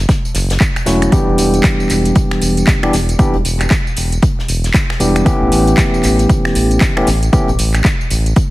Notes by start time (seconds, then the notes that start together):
0.09 kick, snare, closed hi-hat, tambourine
0.25 closed hi-hat, tambourine
0.34 F#1, snare, closed hi-hat, open hi-hat, tambourine
0.50 snare, closed hi-hat, tambourine
0.60 kick, clap, closed hi-hat, tambourine
0.76 finger snap, closed hi-hat, tambourine
0.86 E1 F#3 A3 C#4 E4 F#4, snare, closed hi-hat, open hi-hat, tambourine
1.02 finger snap, closed hi-hat, tambourine
1.11 E3 G3 B3 D4 G4, kick, closed hi-hat, tambourine
1.28 E1
1.38 E1, closed hi-hat, open hi-hat, tambourine
1.54 closed hi-hat, tambourine
1.64 kick, snare, clap, closed hi-hat, tambourine
1.80 tambourine
1.89 E1, clap, closed hi-hat, open hi-hat, tambourine
2.05 closed hi-hat, tambourine
2.15 kick, closed hi-hat, tambourine
2.31 finger snap, snare
2.41 E1, closed hi-hat, open hi-hat, tambourine
2.57 closed hi-hat, tambourine
2.67 kick, snare, clap, closed hi-hat, tambourine
2.83 E3 G3 B3 D4 G4, finger snap, closed hi-hat
2.93 E1, snare, closed hi-hat, open hi-hat, tambourine
3.09 closed hi-hat, tambourine
3.19 E3 G3 B3 D4 G4, kick, closed hi-hat, tambourine
3.34 E1, closed hi-hat
3.45 E1, closed hi-hat, open hi-hat, tambourine
3.60 finger snap, clap, closed hi-hat, tambourine
3.70 kick, snare, clap, closed hi-hat, tambourine
3.87 tambourine
3.96 E1, closed hi-hat, open hi-hat, tambourine
4.12 closed hi-hat, tambourine
4.22 kick, closed hi-hat, tambourine
4.39 snare
4.48 E1, closed hi-hat, open hi-hat, tambourine
4.64 snare, closed hi-hat, tambourine
4.74 kick, snare, clap, closed hi-hat, tambourine
4.90 finger snap, snare
5.00 E1 E3 G3 B3 D4 G4, closed hi-hat, open hi-hat, tambourine
5.16 finger snap, closed hi-hat, tambourine
5.25 E3 A3 B3 C#4 G4, kick, closed hi-hat, tambourine
5.42 A1
5.52 A1, closed hi-hat, open hi-hat, tambourine
5.67 closed hi-hat, tambourine
5.77 kick, snare, clap, closed hi-hat, tambourine
5.94 tambourine
6.03 A1, clap, closed hi-hat, open hi-hat, tambourine
6.19 closed hi-hat, tambourine
6.29 kick, closed hi-hat, tambourine
6.45 finger snap, snare
6.55 A1, closed hi-hat, open hi-hat, tambourine
6.71 closed hi-hat, tambourine
6.81 kick, snare, clap, closed hi-hat, tambourine
6.96 E3 A3 B3 C#4 G4, finger snap, closed hi-hat
7.07 A1, snare, closed hi-hat, open hi-hat, tambourine
7.23 closed hi-hat, tambourine
7.32 E3 A3 B3 C#4 G4, kick, closed hi-hat, tambourine
7.48 A1, closed hi-hat, tambourine
7.59 A1, closed hi-hat, open hi-hat, tambourine
7.74 finger snap, clap, closed hi-hat, tambourine
7.84 kick, snare, clap, closed hi-hat, tambourine
8.01 tambourine
8.10 A1, closed hi-hat, open hi-hat, tambourine
8.26 closed hi-hat, tambourine
8.36 kick, closed hi-hat, tambourine